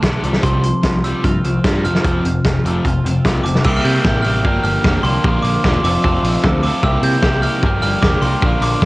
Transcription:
Already playing: D4 A5
0.02 B1 D3 A3 D4, kick, snare, closed hi-hat
0.23 C2 C3 F3 G3, closed hi-hat
0.33 snare
0.43 C2 C3 F3 G3 C6, kick, closed hi-hat
0.64 C3 F3 C6, closed hi-hat
0.83 C2 C3 F3, kick, snare, closed hi-hat
1.04 C3 F3 G3 E6, closed hi-hat
1.24 G2 C3 F3 F4 F6, kick, closed hi-hat
1.44 C2 C3 F3 C4, closed hi-hat
1.64 G2 C3 F3 G3, kick, snare, closed hi-hat
1.84 F1 F2 C3 F3 F6, closed hi-hat
1.95 snare
2.04 F1 F2 C3 F3, kick, closed hi-hat
2.24 F1 F2 C3, closed hi-hat
2.45 F1 F2 C3 F3, kick, snare, closed hi-hat
2.64 F1 F2 C3 F3 A3, closed hi-hat
2.85 F1 F2 C3 F4, kick, closed hi-hat
3.04 F1 F2 C3 C4, closed hi-hat
3.25 C2 F2 C3 F3, kick, snare, closed hi-hat
3.44 F1 F2 C3 C4 D6, closed hi-hat
3.55 snare
3.64 C2 C3 G3 A#3 E4 G4 E6, kick, crash
3.77 F6
3.85 C3 G6, open hi-hat
4.04 A1 C3 G3 A#3 E4 G4, kick, snare
4.22 C3 G3 A#3 E4 F6, open hi-hat
4.27 G4
4.44 G1 G2 D3 F3 G3 A#3 D4 G4 A#4, kick
4.64 G1 F6, open hi-hat
4.84 F1 G2 D3 F3 G3 A#3 D4 G4 A#4, kick, snare
5.03 C2 G2 D3 F3 G3 A#3 D4 G4 C6, open hi-hat
5.08 A#4
5.24 A#1 A#2 D3 F3 A#3 D4 F4 A#4, kick
5.42 A#1 D6, open hi-hat
5.64 E1 A#2 D3 F3 A#3 D4 F4 A#4, kick, snare
5.83 F1 F2 C3 F3 A3 C4 D4 F4 A4 D6, open hi-hat
6.04 F1 F2 C3 F3 A3 C4 D4 F4 A4, kick
6.23 A#1, open hi-hat
6.42 D2 F2 C3 F3 A3 C4 D4 F4 A4, kick, snare
6.63 F2 C3 F3 A3 C4 D4 F4 A4 D6, open hi-hat
6.83 C2 C3 G3 A#3 E4 G4 E6, kick
7.02 C3 G6, open hi-hat
7.23 C2 C3 G3 A#3 E4, kick, snare
7.27 G4
7.42 C3 G3 A#3 F6, open hi-hat
7.46 E4 G4
7.63 G1 G2 D3 F3 G3 A#3 D4 G4 A#4, kick
7.82 G1 F6, open hi-hat
8.02 F1 G2 D3 F3 G3 A#3 A#4 D6, kick, snare
8.06 D4 G4
8.21 C2 G2 D3 F3 G3 A#3 A#4 C6, open hi-hat
8.26 D4 G4
8.42 A#1 A#2 D3 F3 A#3 D4 A#4, kick
8.46 F4
8.61 A#1 D6, open hi-hat
8.81 A#1 A#2, kick, snare

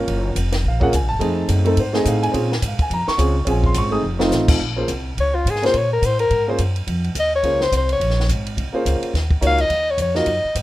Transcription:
Already playing: A#3 C#4 F4 A#4
0.08 F#1, kick, ride
0.35 F1, kick, hi-hat pedal, ride
0.52 snare, ride
0.64 A#1, kick
0.68 F5
0.80 A#3 C#4 F4 G#4 F#5, kick
0.92 C#2 G#5, kick, hi-hat pedal, ride
1.02 A#1
1.09 F#1 A5
1.19 F2 A3 C4 D#4 G#4, kick, ride
1.48 F#2, kick, hi-hat pedal, ride
1.65 A3 C4 D#4 A4, ride
1.77 G#2 C5, kick, ride
1.93 A3 C4 D#4 G#4 D#5, snare
2.05 A2 F5, kick, hi-hat pedal, ride
2.23 G#5, ride
2.32 A#2 C4 C#4 F4 G#4, kick, ride
2.52 snare
2.62 G#2, kick, hi-hat pedal, ride
2.68 F5
2.79 G#5, muted upright bass stroke, kick, ride
2.90 F2 A#5, kick, ride
3.08 C#6, muted upright bass stroke, snare
3.17 C#2 C4 C#4 F4 G#4, kick, hi-hat pedal, ride
3.45 A#1 C4 C#4 F4 G#4, kick, ride
3.51 G#5
3.64 C6, kick
3.74 G#1 C#6, kick, hi-hat pedal, ride
3.90 A3 C4 D#4 G#4 D#6
4.03 F1
4.19 A3 C4 D#4 F4, snare
4.31 A1, snare, hi-hat pedal
4.48 kick, crash
4.60 A#1, kick
4.76 A#3 C#4 F4 G#4 C5
4.88 C2, kick, hi-hat pedal, ride
5.17 C#2 C#5, kick, ride
5.35 F4
5.45 G#2, kick, hi-hat pedal, ride
5.50 G#4
5.56 snare
5.62 A#3 C#4 F4 G#4 C5, snare, ride
5.74 A#2 C#5, kick, ride
5.93 A#4
6.02 A2, kick, hi-hat pedal, ride
6.06 C5
6.19 A#4, ride
6.30 G#2, kick, ride
6.47 A#3 C#4 F4 G#4 C5
6.58 F#2, kick, hi-hat pedal, ride
6.76 ride
6.87 F2, kick, ride
7.04 ride
7.15 D#2, kick, hi-hat pedal, ride
7.19 D#5
7.36 C#5
7.43 C#2 A#3 C#4 F4 G#4 C5, kick, ride
7.61 C5, snare
7.72 C2, kick, hi-hat pedal, ride
7.77 C5
7.89 C#5, ride
8.00 A#1, kick, ride
8.10 snare
8.20 snare
8.29 G#1, kick, hi-hat pedal, ride
8.46 ride
8.57 C2, kick, ride
8.73 A#3 C#4 F4 G#4 C5, muted upright bass stroke
8.85 C#2, kick, hi-hat pedal, ride
9.01 muted upright bass stroke, ride
9.13 D#2, kick, snare, ride
9.31 kick
9.41 C#2 A#3 D#4 F4 F#4 C#5, kick, hi-hat pedal, ride
9.47 F5
9.58 D#5, ride
9.70 D#2, kick, ride
9.91 C#5
9.98 F2, kick, hi-hat pedal, ride
10.02 C#5
10.15 A#3 D#4 F4 F#4 A#4 D#5, snare
10.26 F#2, kick, ride
10.44 muted upright bass stroke
10.55 G#2, kick, hi-hat pedal, ride

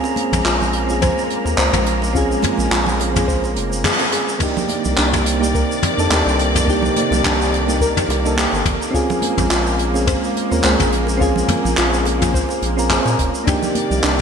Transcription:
Already playing: G#3 A#3 C4 C#4 F4 G#4 A#4 A#5
0.04 high bongo, shaker
0.16 closed hi-hat, high conga
0.32 A#1, mid tom, low conga, shaker
0.45 A#1 F4, clap, high bongo, shaker
0.62 low conga, shaker
0.73 closed hi-hat
0.87 C4 C#4 F4, high conga, shaker
0.91 G#4
1.01 C5, kick, mid tom, high bongo, shaker
1.18 shaker
1.30 closed hi-hat
1.45 D#2, high bongo, shaker
1.58 C#2 C5, clap, high conga, shaker
1.73 A#1, mid tom, shaker
1.86 closed hi-hat
2.02 high bongo, shaker
2.13 C4 C#4 F4, kick, shaker
2.17 G#4
2.31 shaker
2.42 closed hi-hat, mid tom, high bongo, high conga, low conga
2.58 A#1, low conga, shaker
2.71 A#1 F4, clap, shaker
2.86 low conga, shaker
3.00 closed hi-hat, high bongo
3.13 C4 C#4 F4, mid tom, high conga, shaker
3.17 G#4
3.28 C5, kick, shaker
3.44 high bongo, shaker
3.56 F1, closed hi-hat
3.73 shaker
3.84 G#4, clap, mid tom, high conga, shaker
3.99 high bongo, shaker
4.12 G#4, closed hi-hat
4.29 shaker
4.39 C3 D#3 A#3 D4 D#4 D5, kick, mid tom, crash, shaker
4.43 G4
4.57 high bongo, low conga, shaker
4.69 closed hi-hat, high conga
4.85 C2, low conga, shaker
4.97 C2 D4, clap, shaker
5.13 mid tom, high bongo, shaker
5.26 closed hi-hat
5.40 A#3 D4 D#4 G4, high conga, shaker
5.54 A#4, kick, high bongo, shaker
5.71 shaker
5.83 closed hi-hat, mid tom
5.97 F2 A#3 D4 D#4 A4, shaker
6.09 D#2 A#3 D4 D#4 G4 A#4, clap, high bongo, high conga, shaker
6.26 C2, shaker
6.39 closed hi-hat
6.55 mid tom, high bongo, shaker
6.65 A#3 D4 D#4, kick
6.69 G4, shaker
6.83 low conga, shaker
6.96 closed hi-hat, high conga
7.11 C2, high bongo, low conga, shaker
7.24 C2 D4, clap, mid tom, shaker
7.42 shaker
7.53 closed hi-hat, high bongo
7.67 A#3 D4 D#4 G4, high conga, shaker
7.81 A#4, kick, shaker
7.97 mid tom, shaker
8.08 C2, closed hi-hat, high bongo
8.24 A#3 D4 D#4 A4, shaker
8.37 A#3 D4 D#4 G4 A#4, clap, high conga, shaker
8.53 G1, high bongo, shaker
8.65 G1, kick, closed hi-hat, mid tom
8.82 shaker
8.91 C4 C#4 F4, kick
8.95 G#3 G#4, shaker
9.10 high bongo, low conga, shaker
9.22 closed hi-hat, high conga
9.38 A#1, mid tom, low conga, shaker
9.50 A#1 F4, clap, high bongo, shaker
9.67 shaker
9.79 closed hi-hat
9.93 C4 C#4 F4 G#4, high conga, shaker
10.07 C5, kick, mid tom, high bongo, shaker
10.24 shaker
10.36 closed hi-hat
10.50 D#2 C4 C#4 F4 A#4, high bongo, shaker
10.62 C#2 C4 C#4 F4 G#4 C5, clap, high conga, shaker
10.80 A#1, mid tom, shaker
10.92 closed hi-hat
11.07 high bongo, shaker
11.17 C4 C#4 F4, kick
11.21 G#4, shaker
11.36 low conga, shaker
11.48 closed hi-hat, mid tom, high bongo, high conga
11.65 A#1, low conga, shaker
11.77 A#1 F4, clap, shaker
11.94 shaker
12.05 closed hi-hat, high bongo
12.20 C4 C#4 F4 G#4, mid tom, high conga, shaker
12.34 C5, kick, shaker
12.49 high bongo, shaker
12.62 A#1, closed hi-hat
12.77 C4 C#4 F4 A#4, shaker
12.89 C4 C#4 F4 G#4 C5, clap, mid tom, high conga, shaker
13.05 A#2, high bongo, shaker
13.19 F1, kick, closed hi-hat
13.35 shaker
13.44 C3 A#3 D4 D#4 D5, kick, mid tom
13.48 D#3 G4, shaker
13.63 high bongo, low conga, shaker
13.75 closed hi-hat, high conga
13.90 C2, low conga, shaker
14.03 C2 D4, clap, shaker

